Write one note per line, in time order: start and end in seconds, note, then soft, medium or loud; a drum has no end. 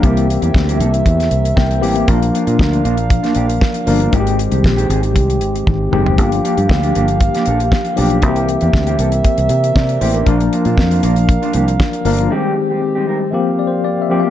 0.02 0.37 C2 loud
0.02 0.94 E3 medium
0.02 0.27 G3 medium
0.02 0.94 A#3 medium
0.02 0.27 A#3 medium
0.02 0.94 C4 medium
0.02 2.06 C4 medium
0.02 0.27 E4 medium
0.02 0.94 G4 medium
0.02 0.28 G4 medium
0.02 4.09 A#4 medium
0.02 2.06 E5 medium
0.02 kick loud
0.02 closed hi-hat medium
0.17 closed hi-hat soft
0.28 muted clean electric guitar stroke soft
0.28 closed hi-hat medium
0.41 0.53 E2 medium
0.41 0.53 G3 soft
0.41 0.53 A#3 soft
0.41 0.54 E4 soft
0.41 0.54 G4 medium
0.41 closed hi-hat soft
0.54 0.81 D2 medium
0.54 muted clean electric guitar stroke soft
0.54 kick loud
0.54 snare loud
0.67 0.78 G3 medium
0.67 0.79 A#3 medium
0.67 0.79 E4 medium
0.67 0.81 G4 medium
0.67 closed hi-hat soft
0.79 1.01 C2 medium
0.79 0.97 G3 soft
0.79 0.93 A#3 medium
0.79 0.92 E4 medium
0.79 0.92 A4 medium
0.79 closed hi-hat medium
0.92 muted clean electric guitar stroke medium
0.92 closed hi-hat soft
1.04 1.28 E2 medium
1.04 muted clean electric guitar stroke soft
1.04 kick loud
1.04 closed hi-hat medium
1.18 muted clean electric guitar stroke soft
1.18 snare soft
1.18 closed hi-hat soft
1.31 1.53 C2 medium
1.31 closed hi-hat medium
1.44 muted clean electric guitar stroke soft
1.44 closed hi-hat soft
1.56 1.82 C2 medium
1.56 2.04 G5 medium
1.56 muted clean electric guitar stroke soft
1.56 kick loud
1.56 snare loud
1.70 muted clean electric guitar stroke soft
1.70 closed hi-hat soft
1.81 2.04 A1 medium
1.81 2.05 E3 medium
1.81 1.97 G3 medium
1.81 2.05 A#3 medium
1.81 1.96 A#3 medium
1.81 2.05 C4 medium
1.81 1.95 E4 medium
1.81 2.05 G4 medium
1.81 1.95 G4 medium
1.81 open hi-hat medium
1.96 2.07 G3 soft
1.96 2.07 A#3 medium
1.96 2.08 E4 medium
1.96 2.09 G4 medium
1.96 closed hi-hat soft
2.07 2.30 A#1 loud
2.07 2.99 F3 medium
2.07 2.29 F3 medium
2.07 2.99 A#3 medium
2.07 2.21 A#3 medium
2.07 2.99 D4 medium
2.07 2.20 D4 medium
2.07 4.12 D4 medium
2.07 2.20 F4 medium
2.07 2.99 A#4 medium
2.07 4.12 F5 medium
2.07 kick loud
2.07 closed hi-hat medium
2.21 muted clean electric guitar stroke soft
2.21 closed hi-hat soft
2.33 2.47 F3 medium
2.33 2.46 A#3 medium
2.33 2.46 D4 medium
2.33 2.45 F4 medium
2.33 closed hi-hat medium
2.46 2.58 A#2 medium
2.46 2.57 F3 soft
2.46 2.58 A#3 soft
2.46 2.58 D4 medium
2.46 2.59 F4 medium
2.46 closed hi-hat soft
2.59 2.81 D2 medium
2.59 kick loud
2.59 snare loud
2.72 2.82 F3 soft
2.72 2.83 A#3 soft
2.72 2.83 D4 medium
2.72 2.84 F4 medium
2.72 closed hi-hat soft
2.83 3.18 A#1 medium
2.83 3.05 F3 medium
2.83 2.97 A#3 medium
2.83 2.97 D4 medium
2.83 2.96 F4 medium
2.83 closed hi-hat medium
2.97 muted clean electric guitar stroke soft
2.97 closed hi-hat soft
3.10 kick loud
3.10 closed hi-hat medium
3.23 3.33 F3 medium
3.23 3.34 A#3 medium
3.23 3.35 D4 medium
3.23 3.36 F4 medium
3.23 snare soft
3.23 closed hi-hat soft
3.35 3.58 A#1 medium
3.35 3.53 F3 medium
3.35 3.49 A#3 medium
3.35 3.48 D4 medium
3.35 3.48 G4 medium
3.35 closed hi-hat medium
3.48 muted clean electric guitar stroke soft
3.48 closed hi-hat soft
3.61 kick loud
3.61 snare loud
3.74 muted clean electric guitar stroke soft
3.74 closed hi-hat soft
3.86 4.09 G1 medium
3.86 4.09 F3 medium
3.86 4.01 F3 medium
3.86 4.10 A#3 medium
3.86 4.01 A#3 medium
3.86 4.10 D4 medium
3.86 4.00 D4 medium
3.86 3.99 F4 medium
3.86 4.10 A#4 medium
3.86 open hi-hat medium
4.00 4.12 F3 soft
4.00 4.13 A#3 medium
4.00 4.13 D4 medium
4.00 4.14 F4 medium
4.00 closed hi-hat soft
4.12 4.46 G#1 loud
4.12 5.03 D#3 medium
4.12 4.36 D#3 medium
4.12 5.04 G#3 medium
4.12 4.37 G#3 medium
4.12 6.16 G#3 medium
4.12 5.04 C4 medium
4.12 4.37 C4 medium
4.12 6.16 C4 medium
4.12 4.20 F4 medium
4.12 6.16 G4 medium
4.12 4.37 G4 medium
4.12 kick loud
4.12 closed hi-hat medium
4.20 5.07 G4 medium
4.27 closed hi-hat soft
4.38 muted clean electric guitar stroke soft
4.38 closed hi-hat medium
4.51 4.62 C2 medium
4.51 4.62 D#3 soft
4.51 4.63 G#3 soft
4.51 4.63 C4 soft
4.51 4.63 G4 medium
4.51 closed hi-hat soft
4.63 4.86 A#1 medium
4.63 muted clean electric guitar stroke soft
4.63 kick loud
4.63 snare loud
4.77 4.87 D#3 medium
4.77 4.88 G#3 medium
4.77 4.89 C4 medium
4.77 4.90 G4 medium
4.77 closed hi-hat soft
4.88 5.16 G#1 medium
4.88 5.06 D#3 medium
4.88 5.03 G#3 medium
4.88 5.02 C4 medium
4.88 5.02 G#4 medium
4.88 closed hi-hat medium
5.03 muted clean electric guitar stroke soft
5.03 closed hi-hat soft
5.15 5.41 C2 loud
5.15 muted clean electric guitar stroke soft
5.15 kick loud
5.15 closed hi-hat medium
5.28 muted clean electric guitar stroke soft
5.28 closed hi-hat soft
5.41 5.63 G#1 medium
5.41 closed hi-hat medium
5.55 muted clean electric guitar stroke soft
5.55 closed hi-hat soft
5.66 5.88 G#1 medium
5.66 muted clean electric guitar stroke soft
5.66 kick loud
5.66 high tom medium
5.80 muted clean electric guitar stroke soft
5.91 6.18 F#1 medium
5.91 6.14 D#3 medium
5.91 6.06 D#3 medium
5.91 6.15 G#3 medium
5.91 6.06 G#3 medium
5.91 6.15 C4 medium
5.91 6.05 C4 medium
5.91 6.15 G4 medium
5.91 6.04 G4 medium
5.91 mid tom medium
6.06 6.17 D#3 medium
6.06 6.18 G#3 medium
6.06 6.19 C4 medium
6.06 6.18 G4 medium
6.06 floor tom medium
6.17 6.40 G1 loud
6.17 7.08 F3 medium
6.17 6.39 F3 medium
6.17 8.20 A#3 medium
6.17 7.09 A#3 medium
6.17 6.31 A#3 medium
6.17 7.09 D4 medium
6.17 6.31 D4 medium
6.17 7.09 G4 medium
6.17 8.21 G4 medium
6.17 6.30 G4 medium
6.17 8.21 F5 medium
6.17 kick loud
6.17 closed hi-hat medium
6.31 muted clean electric guitar stroke soft
6.31 closed hi-hat soft
6.44 6.58 F3 medium
6.44 6.57 A#3 medium
6.44 6.57 D4 medium
6.44 6.56 G4 medium
6.44 closed hi-hat medium
6.57 6.68 G2 medium
6.57 6.69 F3 soft
6.57 6.69 A#3 soft
6.57 6.70 D4 medium
6.57 6.70 G4 medium
6.57 closed hi-hat soft
6.69 6.91 D2 medium
6.69 muted clean electric guitar stroke soft
6.69 kick loud
6.69 snare loud
6.83 6.94 F3 medium
6.83 6.95 A#3 medium
6.83 6.95 D4 medium
6.83 6.96 G4 medium
6.83 closed hi-hat soft
6.95 7.29 G1 medium
6.95 7.16 F3 medium
6.95 7.09 A#3 medium
6.95 7.08 D4 medium
6.95 7.07 G4 medium
6.95 closed hi-hat medium
7.08 muted clean electric guitar stroke soft
7.08 closed hi-hat soft
7.21 muted clean electric guitar stroke medium
7.21 kick loud
7.21 closed hi-hat medium
7.34 7.45 F3 medium
7.34 7.46 A#3 medium
7.34 7.47 D4 medium
7.34 7.48 G4 medium
7.34 snare soft
7.34 closed hi-hat soft
7.45 7.68 A#1 medium
7.45 7.63 F3 medium
7.45 7.61 A#3 medium
7.45 7.60 D4 medium
7.45 7.60 A4 medium
7.45 closed hi-hat medium
7.60 muted clean electric guitar stroke soft
7.60 closed hi-hat soft
7.72 muted clean electric guitar stroke soft
7.72 kick loud
7.72 snare loud
7.85 muted clean electric guitar stroke soft
7.85 closed hi-hat soft
7.96 8.23 B1 medium
7.96 8.19 F3 medium
7.96 8.12 F3 medium
7.96 8.19 A#3 medium
7.96 8.11 A#3 medium
7.96 8.20 D4 medium
7.96 8.11 D4 medium
7.96 8.20 G4 medium
7.96 8.10 G4 medium
7.96 open hi-hat medium
8.10 8.23 F3 medium
8.10 8.23 A#3 medium
8.10 8.24 D4 medium
8.10 8.24 G4 medium
8.10 closed hi-hat soft
8.21 8.56 C2 loud
8.21 9.13 E3 medium
8.21 8.46 E3 medium
8.21 9.13 A#3 medium
8.21 8.47 A#3 medium
8.21 9.13 C4 medium
8.21 10.25 C4 medium
8.21 8.47 C4 medium
8.21 8.29 F#4 medium
8.21 8.47 G4 medium
8.21 12.28 A#4 medium
8.21 10.25 E5 medium
8.21 kick medium
8.21 closed hi-hat medium
8.28 9.16 G4 medium
8.36 closed hi-hat soft
8.48 muted clean electric guitar stroke soft
8.48 closed hi-hat medium
8.61 8.72 E2 medium
8.61 8.72 E3 medium
8.61 8.73 A#3 medium
8.61 8.73 C4 medium
8.61 8.74 G4 medium
8.61 closed hi-hat soft
8.73 8.95 D2 medium
8.73 muted clean electric guitar stroke soft
8.73 kick loud
8.73 snare medium
8.87 8.97 E3 medium
8.87 8.98 A#3 medium
8.87 8.99 C4 medium
8.87 9.00 G4 medium
8.87 closed hi-hat soft
8.99 9.21 C2 medium
8.99 9.16 E3 medium
8.99 9.12 A#3 medium
8.99 9.11 C4 medium
8.99 9.12 A4 medium
8.99 closed hi-hat medium
9.12 muted clean electric guitar stroke soft
9.12 closed hi-hat soft
9.24 muted clean electric guitar stroke soft
9.24 kick loud
9.24 closed hi-hat medium
9.38 9.48 C2 medium
9.38 muted clean electric guitar stroke soft
9.38 closed hi-hat soft
9.49 9.71 C3 medium
9.49 closed hi-hat medium
9.64 muted clean electric guitar stroke soft
9.64 closed hi-hat soft
9.76 9.97 C3 medium
9.76 10.00 D5 medium
9.76 muted clean electric guitar stroke soft
9.76 kick loud
9.76 snare loud
9.89 muted clean electric guitar stroke soft
9.89 closed hi-hat soft
10.01 10.23 A1 loud
10.01 10.15 E3 medium
10.01 10.14 A#3 medium
10.01 10.13 C4 medium
10.01 10.14 E4 medium
10.01 10.13 G4 medium
10.01 10.14 C5 medium
10.01 open hi-hat medium
10.14 10.26 E3 medium
10.14 10.26 A#3 medium
10.14 10.28 C4 medium
10.14 10.25 D4 soft
10.14 10.28 G4 medium
10.14 10.25 A#4 medium
10.14 closed hi-hat soft
10.25 10.48 A#1 medium
10.25 11.17 F3 medium
10.25 10.47 F3 medium
10.25 11.17 A#3 medium
10.25 10.41 A#3 medium
10.25 11.17 D4 medium
10.25 12.30 D4 medium
10.25 10.40 D4 loud
10.25 10.39 F4 loud
10.25 11.17 A#4 medium
10.25 12.30 F5 medium
10.25 kick loud
10.25 closed hi-hat medium
10.40 muted clean electric guitar stroke soft
10.40 closed hi-hat soft
10.52 10.67 F3 medium
10.52 10.66 A#3 medium
10.52 10.66 D4 medium
10.52 10.65 F4 medium
10.52 closed hi-hat medium
10.65 10.76 A#2 medium
10.65 10.77 F3 soft
10.65 10.77 A#3 medium
10.65 10.78 D4 medium
10.65 10.78 F4 medium
10.65 closed hi-hat soft
10.78 10.99 F2 medium
10.78 muted clean electric guitar stroke soft
10.78 kick loud
10.78 snare loud
10.91 11.01 F3 medium
10.91 11.02 A#3 medium
10.91 11.02 D4 medium
10.91 11.03 F4 medium
10.91 closed hi-hat soft
11.03 11.36 A#1 medium
11.03 11.24 F3 medium
11.03 11.17 A#3 medium
11.03 11.16 D4 medium
11.03 11.15 F4 medium
11.03 closed hi-hat medium
11.16 muted clean electric guitar stroke soft
11.16 closed hi-hat soft
11.29 muted clean electric guitar stroke soft
11.29 kick loud
11.29 closed hi-hat medium
11.42 11.52 F3 medium
11.42 11.53 A#3 medium
11.42 11.54 D4 medium
11.42 11.55 F4 medium
11.42 closed hi-hat soft
11.53 11.76 C2 medium
11.53 11.71 F3 medium
11.53 11.67 A#3 medium
11.53 11.67 D4 medium
11.53 11.67 G4 medium
11.53 closed hi-hat medium
11.68 muted clean electric guitar stroke soft
11.68 closed hi-hat soft
11.80 muted clean electric guitar stroke soft
11.80 kick loud
11.80 snare loud
11.93 muted clean electric guitar stroke soft
11.93 closed hi-hat soft
12.05 12.27 G1 medium
12.05 12.28 F3 medium
12.05 12.19 F3 medium
12.05 12.28 A#3 medium
12.05 12.18 A#3 medium
12.05 12.28 D4 medium
12.05 12.18 D4 medium
12.05 12.17 F4 loud
12.05 12.29 A#4 loud
12.05 open hi-hat medium
12.18 12.30 F3 soft
12.18 12.30 A#3 medium
12.18 12.30 D4 soft
12.18 12.31 F4 medium
12.18 closed hi-hat soft
12.30 13.21 D#3 medium
12.30 12.54 G3 medium
12.30 13.22 G#3 medium
12.30 13.32 G#3 medium
12.30 12.54 C4 medium
12.30 13.22 C4 medium
12.30 14.19 C4 medium
12.30 12.55 D#4 medium
12.30 13.32 G4 medium
12.30 12.55 G4 medium
12.30 13.22 G4 medium
12.56 muted clean electric guitar stroke soft
12.70 12.81 G3 soft
12.70 12.81 C4 medium
12.70 12.82 D#4 soft
12.70 12.82 G4 medium
12.82 muted clean electric guitar stroke soft
12.95 13.06 G3 medium
12.95 13.07 C4 medium
12.95 13.07 D#4 medium
12.95 13.09 G4 medium
13.07 13.25 G3 medium
13.07 13.21 C4 medium
13.07 13.20 D#4 medium
13.07 13.20 A#4 medium
13.20 muted clean electric guitar stroke soft
13.32 14.01 F3 medium
13.32 14.01 A#3 medium
13.32 14.02 C4 medium
13.32 14.02 G4 medium
13.32 14.19 A#4 medium
13.32 14.19 F5 medium
13.32 muted clean electric guitar stroke soft
13.47 muted clean electric guitar stroke soft
13.59 13.67 D5 medium
13.67 13.83 C5 medium
13.72 muted clean electric guitar stroke soft
13.83 14.00 D5 medium
13.83 muted clean electric guitar stroke soft
13.98 muted clean electric guitar stroke soft
14.02 14.18 E5 medium
14.09 14.24 F3 medium
14.09 14.30 F3 medium
14.09 14.23 A#3 medium
14.09 14.30 A#3 medium
14.09 14.22 C4 medium
14.09 14.30 C4 medium
14.09 14.22 G4 medium
14.09 14.30 G4 medium
14.20 14.30 C4 medium
14.20 14.30 G4 medium
14.20 14.30 F5 medium
14.24 14.30 F3 soft
14.24 14.30 A#3 medium